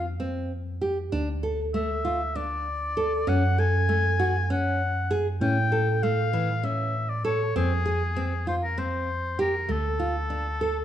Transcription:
Already playing: tine electric piano F2, oboe F5
0.20 nylon-string guitar C4
0.81 nylon-string guitar G4
1.12 tine electric piano D2, nylon-string guitar D4
1.43 nylon-string guitar A4
1.74 nylon-string guitar A3, oboe E5
2.05 nylon-string guitar F4
2.35 nylon-string guitar D4, oboe D5
2.97 nylon-string guitar A4
3.27 tine electric piano F#2, nylon-string guitar C#4, oboe F#5
3.58 nylon-string guitar A4, oboe G#5
3.89 nylon-string guitar A3
4.20 nylon-string guitar F#4
4.50 nylon-string guitar C#4, oboe F#5
5.11 nylon-string guitar G#4
5.41 tine electric piano A2, nylon-string guitar C#4, oboe G5
5.72 nylon-string guitar A4
6.03 nylon-string guitar A3, oboe F5
6.33 nylon-string guitar E3
6.63 nylon-string guitar C#4, oboe E5
7.09 oboe D5
7.25 nylon-string guitar A4, oboe C#5
7.56 tine electric piano F2, nylon-string guitar C4, oboe G#4
7.86 nylon-string guitar G#4
8.16 nylon-string guitar C4
8.47 nylon-string guitar F4, oboe C5
8.63 oboe A#4
8.78 nylon-string guitar C4, oboe C5
9.39 nylon-string guitar G4, oboe A#4
9.69 tine electric piano D2, nylon-string guitar A3, oboe A4
9.99 nylon-string guitar F4
10.30 nylon-string guitar D4
10.61 nylon-string guitar A4

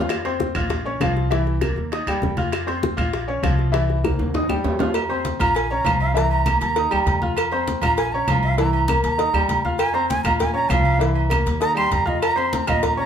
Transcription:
Already playing: upright bass F2, upright piano F4 F5 F6
0.09 high bongo, high conga, high timbale, claves
0.25 upright piano C4 C5 C6, high bongo, high timbale
0.40 high bongo, high conga
0.55 upright bass A#1, upright piano F4 F5 F6, high bongo, high conga, low conga, high timbale, claves
0.70 high bongo, high conga, low conga, high timbale
0.85 upright piano C#4 C#5 C#6, high conga
1.00 upright bass C2, upright piano F3 F4 F5, high bongo, low bongo, high conga, high timbale, claves
1.16 high bongo, high conga
1.31 upright piano E3 E4 E5, high bongo, high conga, high timbale
1.47 high bongo, high conga
1.61 upright piano A#3 A#4 A#5, high bongo, high conga, high timbale, claves
1.76 upright bass D#2, high bongo, high conga
1.92 upright piano D#4 D#5 D#6, high bongo, high conga, high timbale
2.06 upright bass D#2, upright piano G3 G4 G5, high conga, high timbale, claves
2.22 upright bass F2, high bongo, low bongo, high conga
2.37 upright piano F4 F5 F6, high bongo, high conga, high timbale
2.52 high bongo, high timbale, claves
2.67 upright piano C4 C5 C6, high bongo, high conga, high timbale
2.83 high bongo, high conga
2.97 upright bass A#1, upright piano F4 F5 F6, high bongo, high conga, low conga, high timbale, claves
3.13 high bongo, high conga, high timbale
3.28 upright piano C#4 C#5 C#6, high conga
3.43 upright bass C2, upright piano F3 F4 F5, high bongo, low bongo, high conga, high timbale, claves
3.59 high bongo, high conga
3.72 upright piano E3 E4 E5, high bongo, high conga, high timbale
3.89 high bongo, high conga
4.04 upright piano A#3 A#4 A#5, high bongo, high conga, high timbale, claves
4.19 upright bass D#2, high bongo, high conga, high timbale
4.34 upright piano D#4 D#5 D#6, high bongo, low conga, high timbale
4.49 upright piano G3 G4 G5, high bongo, low conga, claves
4.64 upright bass F2, low bongo, low conga, low timbale
4.79 upright piano F4 F5 F6, low bongo, low conga, low timbale
4.94 cowbell, high conga, low agogo, claves
5.09 upright piano C4 C5 C6, high conga, low agogo
5.25 cowbell, high conga
5.39 upright bass A#1, upright piano F4 F5 F6, flute A#5, cowbell, high conga, low conga, low agogo, claves
5.55 flute G#5, cowbell, low agogo
5.71 upright piano C#4 C#5 C#6, flute A#5, high conga
5.85 upright bass C2, upright piano F3 F4 F5, cowbell, high conga, low agogo, claves
6.00 flute F5, high conga, low agogo
6.14 upright piano E3 E4 E5, flute A#5, cowbell, high conga
6.31 flute A#5, high conga, low agogo
6.46 upright piano A#3 A#4 A#5, cowbell, high conga, low agogo, claves
6.61 upright bass D#2, flute A#5, cowbell, high conga, low agogo
6.76 upright piano D#4 D#5 D#6, cowbell, high conga
6.91 upright bass D#2, upright piano G3 G4 G5, high conga, low agogo, claves
7.06 upright bass F2, cowbell, high conga, low agogo
7.21 upright piano F4 F5 F6, high conga
7.37 cowbell, high conga, low agogo, claves
7.52 upright piano C4 C5 C6, high conga, low agogo
7.67 cowbell, high conga
7.82 upright bass A#1, upright piano F4 F5 F6, flute A#5, cowbell, high conga, low conga, low agogo, claves
7.97 flute G#5, cowbell, high conga, low agogo
8.12 upright piano C#4 C#5 C#6, flute A#5, high conga
8.28 upright bass C2, upright piano F3 F4 F5, cowbell, high conga, low agogo, claves
8.43 flute F5, high conga, low agogo
8.58 upright piano E3 E4 E5, flute A#5, cowbell, high conga
8.73 flute A#5, high conga, low agogo
8.88 upright piano A#3 A#4 A#5, cowbell, high conga, low agogo, claves
9.03 upright bass D#2, flute A#5, cowbell, high conga, low agogo
9.18 upright piano D#4 D#5 D#6, cowbell, high conga
9.33 upright bass D#2, upright piano G3 G4 G5, high conga, low agogo, claves
9.49 upright bass F2, cowbell, high conga, low agogo
9.65 upright piano F4 F5 F6, high conga
9.79 flute G#5, cowbell, high conga, low agogo, claves
9.93 upright piano C4 C5 C6, flute A#5, high conga, low agogo
10.09 flute G#5, cowbell, high conga
10.24 upright bass A#1, upright piano F4 F5 F6, flute A#5, cowbell, high conga, low conga, low agogo, claves
10.39 flute G#5, cowbell, high conga, low conga, low agogo
10.54 upright piano C#4 C#5 C#6, flute A#5, high conga
10.69 upright bass C2, upright piano F3 F4 F5, flute F5, cowbell, high conga, low agogo, claves
10.85 high conga, low agogo
10.99 upright piano E3 E4 E5, cowbell, high conga
11.15 high conga, low agogo
11.29 upright piano A#3 A#4 A#5, cowbell, high conga, low agogo, claves
11.46 upright bass D#2, cowbell, low agogo
11.60 upright piano D#4 D#5 D#6, flute A#5, cowbell, high conga
11.74 upright piano G3 G4 G5, flute C6, high conga, low agogo, claves
11.91 upright bass F2, flute A#5, cowbell, high conga, low agogo
12.05 upright piano F4 F5 F6, flute D#5, high conga
12.22 flute A#5, cowbell, low agogo, claves
12.36 upright piano C4 C5 C6, flute C6, high conga, low agogo
12.53 flute A#5, cowbell, high conga
12.67 upright bass A#1, upright piano F4 F5 F6, flute D#5, cowbell, high conga, low conga, low agogo, claves
12.83 flute A#5, cowbell, high conga, low conga, low agogo
12.97 upright piano C#4 C#5 C#6, flute A#5, high conga

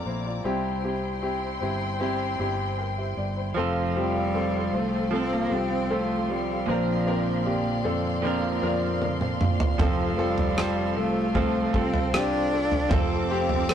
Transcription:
Already playing: string section F3 D5 A#5 D6, grand piano A#3 C4 D4 F4 G4 A4 A#4
0.06 fingered electric bass A#1, grand piano E4 C5
0.25 grand piano F4 D5
0.44 fingered electric bass C2, grand piano C3 G3 C4 E4 G4, string section E4 C5 G5 C6
0.83 grand piano C4 E4 G4
1.22 grand piano C4 E4 G4
1.61 fingered electric bass G1, grand piano C4 E4 G4
2.00 grand piano C4 E4 G4
2.39 fingered electric bass G1, grand piano C4 E4 G4
2.78 grand piano A#4 G5
2.98 grand piano G4 E5
3.17 fingered electric bass G1, grand piano D5
3.37 grand piano E4 C5
3.55 fingered electric bass F1, grand piano C3 C4 F4 A4, clean electric guitar F3 C4 F4, cello F3, string section A4 C5 F5 C6
3.59 clean electric guitar A4
3.95 cello G3, grand piano C4 F4 G4
4.34 grand piano C4 F4 A4
4.73 fingered electric bass C2, cello A3, grand piano C4 F4 C5
5.11 clean electric guitar F3 C4 F4, grand piano C4 F4 A4, cello C4
5.16 clean electric guitar A4
5.33 cello A#3
5.51 fingered electric bass C2, grand piano C4 F4 G4, cello C4
5.90 cello A3, grand piano C4 F4 A4
6.28 cello G3, grand piano C4 F4 G4
6.66 fingered electric bass A#1, clean electric guitar A#2 D3 F3 C4 D4, grand piano A#2 F3 C4 D4 A#4, cello F3, string section A#3 D5
6.71 clean electric guitar A#4
7.06 grand piano C4 D4 A#4
7.45 grand piano C4 D4 G4
7.84 fingered electric bass F2, grand piano C4 D4 A4
8.22 clean electric guitar A#2 D3 F3 C4 D4, grand piano C4 D4 A#4
8.27 clean electric guitar A#4
8.62 fingered electric bass F2, grand piano C4 D4 A#4
9.02 grand piano D4 A#4, high tom
9.21 grand piano C5, mid tom
9.40 grand piano F4 D5, mid tom
9.60 grand piano D4 A#4, floor tom
9.78 fingered electric bass F1, grand piano C3 C4 F4 A4, clean electric guitar F3 C4 F4 A4, cello F3, string section A4 C5, kick, floor tom
10.12 cello A3
10.17 cello G3, grand piano C4 F4 A4
10.38 floor tom
10.56 clean electric guitar F3 C4 F4 A4, grand piano C4 F4 C5, cross-stick
10.96 fingered electric bass C2, cello A3, grand piano C4 F4 A4
11.35 clean electric guitar F3 C4 F4 A4, grand piano C4 F4 A4, kick, floor tom
11.73 fingered electric bass C2, grand piano C4 F4 A4, cello C4, clean electric guitar C4 F4 A4, kick
11.94 floor tom
12.13 grand piano C4 F4 G4, cello D4, cross-stick
12.53 grand piano C4 F4 A4
12.71 floor tom
12.89 fingered electric bass F1, grand piano C3 C4 F4 A4, clean electric guitar F3 C4 F4, cello C4, string section D6, kick, floor tom
12.94 clean electric guitar A4
13.30 grand piano C4 F4 G4
13.49 floor tom
13.69 grand piano C4 F4 A4, cross-stick

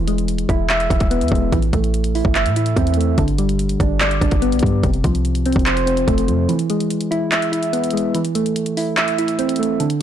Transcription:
Already playing: 808-style bass E1, synth keys E3
0.08 synth keys G#3, closed hi-hat
0.18 closed hi-hat
0.28 closed hi-hat
0.38 closed hi-hat
0.49 808-style bass E1, synth keys E4, kick, closed hi-hat
0.70 synth keys E5, clap, closed hi-hat
0.80 closed hi-hat
0.90 808-style bass E1, synth keys E4, kick, closed hi-hat
1.00 kick, closed hi-hat
1.11 synth keys B3, closed hi-hat
1.21 808-style bass E2, closed hi-hat
1.28 808-style bass E1, synth keys G#3, kick, closed hi-hat
1.35 closed hi-hat
1.52 808-style bass A1, synth keys E3, kick, closed hi-hat
1.62 closed hi-hat
1.73 808-style bass A1, synth keys A3, kick, closed hi-hat
1.84 closed hi-hat
1.94 closed hi-hat
2.04 closed hi-hat
2.15 synth keys E4, open hi-hat
2.25 808-style bass G1, kick
2.35 synth keys E5, clap, closed hi-hat
2.46 808-style bass A2, closed hi-hat
2.56 synth keys E4, closed hi-hat
2.66 closed hi-hat
2.76 808-style bass E2, synth keys C4, kick, closed hi-hat
2.87 closed hi-hat
2.94 synth keys A3, closed hi-hat
3.01 closed hi-hat
3.18 808-style bass G1, synth keys D3, kick, closed hi-hat
3.28 closed hi-hat
3.38 synth keys G3, closed hi-hat
3.49 closed hi-hat
3.59 closed hi-hat
3.69 closed hi-hat
3.80 808-style bass G1, synth keys D4, kick, closed hi-hat
4.00 synth keys D5, clap, closed hi-hat
4.11 closed hi-hat
4.21 808-style bass G1, synth keys D4, kick, closed hi-hat
4.31 kick, closed hi-hat
4.42 synth keys B3, closed hi-hat
4.52 808-style bass B1, closed hi-hat
4.59 808-style bass G2, synth keys G3, kick, closed hi-hat
4.66 closed hi-hat
4.83 808-style bass F1, synth keys C3, kick, closed hi-hat
4.93 closed hi-hat
5.04 808-style bass C2, synth keys F3, kick, closed hi-hat
5.15 closed hi-hat
5.25 closed hi-hat
5.35 closed hi-hat
5.46 synth keys C4, closed hi-hat
5.52 808-style bass F1, kick, closed hi-hat
5.59 closed hi-hat
5.66 synth keys C5, clap, closed hi-hat
5.77 closed hi-hat
5.86 synth keys C4, closed hi-hat
5.97 closed hi-hat
6.08 808-style bass F1, synth keys A3, kick, closed hi-hat
6.18 closed hi-hat
6.28 808-style bass F2, synth keys F3, closed hi-hat
6.49 synth keys E3, closed hi-hat
6.59 closed hi-hat
6.70 synth keys G#3, closed hi-hat
6.80 closed hi-hat
6.90 closed hi-hat
7.01 closed hi-hat
7.11 synth keys E4, closed hi-hat
7.32 synth keys E5, clap, closed hi-hat
7.42 closed hi-hat
7.52 synth keys E4, closed hi-hat
7.63 closed hi-hat
7.73 synth keys B3, closed hi-hat
7.84 closed hi-hat
7.90 synth keys G#3, closed hi-hat
7.97 closed hi-hat
8.15 synth keys E3, closed hi-hat
8.25 closed hi-hat
8.35 synth keys A3, closed hi-hat
8.46 closed hi-hat
8.56 closed hi-hat
8.66 closed hi-hat
8.77 synth keys E4, open hi-hat
8.97 synth keys E5, clap, closed hi-hat
9.08 closed hi-hat
9.18 synth keys E4, closed hi-hat
9.28 closed hi-hat
9.39 synth keys C4, closed hi-hat
9.49 closed hi-hat
9.56 synth keys A3, closed hi-hat
9.63 closed hi-hat
9.80 synth keys D3, closed hi-hat
9.90 closed hi-hat

